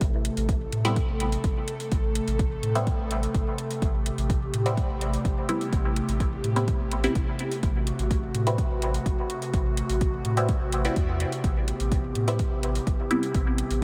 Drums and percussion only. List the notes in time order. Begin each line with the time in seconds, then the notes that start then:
0.01 kick, closed hi-hat
0.25 closed hi-hat
0.37 closed hi-hat
0.49 kick, closed hi-hat
0.72 closed hi-hat
0.85 closed hi-hat
0.96 kick, closed hi-hat
1.20 closed hi-hat
1.32 closed hi-hat
1.44 kick, closed hi-hat
1.68 closed hi-hat
1.80 closed hi-hat
1.92 kick, closed hi-hat
2.15 closed hi-hat
2.28 closed hi-hat
2.39 kick, closed hi-hat
2.63 closed hi-hat
2.75 closed hi-hat
2.87 kick, closed hi-hat
3.11 closed hi-hat
3.23 closed hi-hat
3.34 kick, closed hi-hat
3.58 closed hi-hat
3.71 closed hi-hat
3.82 kick, closed hi-hat
4.06 closed hi-hat
4.18 closed hi-hat
4.30 kick, closed hi-hat
4.54 closed hi-hat
4.66 closed hi-hat
4.77 kick, closed hi-hat
5.01 closed hi-hat
5.13 closed hi-hat
5.25 kick, closed hi-hat
5.49 closed hi-hat
5.61 closed hi-hat
5.73 kick, closed hi-hat
5.96 closed hi-hat
6.09 closed hi-hat
6.20 kick, closed hi-hat
6.44 closed hi-hat
6.56 closed hi-hat
6.68 kick, closed hi-hat
6.91 closed hi-hat
7.04 closed hi-hat
7.15 kick, closed hi-hat
7.39 closed hi-hat
7.51 closed hi-hat
7.63 kick, closed hi-hat
7.87 closed hi-hat
7.99 closed hi-hat
8.11 kick, closed hi-hat
8.35 closed hi-hat
8.47 closed hi-hat
8.58 kick, closed hi-hat
8.82 closed hi-hat
8.94 closed hi-hat
9.06 kick, closed hi-hat
9.30 closed hi-hat
9.42 closed hi-hat
9.54 kick, closed hi-hat
9.77 closed hi-hat
9.89 closed hi-hat
10.01 kick, closed hi-hat
10.25 closed hi-hat
10.37 closed hi-hat
10.49 kick, closed hi-hat
10.72 closed hi-hat
10.85 closed hi-hat
10.96 kick, closed hi-hat
11.20 closed hi-hat
11.32 closed hi-hat
11.44 kick, closed hi-hat
11.68 closed hi-hat
11.80 closed hi-hat
11.92 kick, closed hi-hat
12.15 closed hi-hat
12.28 closed hi-hat
12.39 kick, closed hi-hat
12.63 closed hi-hat
12.75 closed hi-hat
12.87 kick, closed hi-hat
13.11 closed hi-hat
13.23 closed hi-hat
13.34 kick, closed hi-hat
13.58 closed hi-hat
13.71 closed hi-hat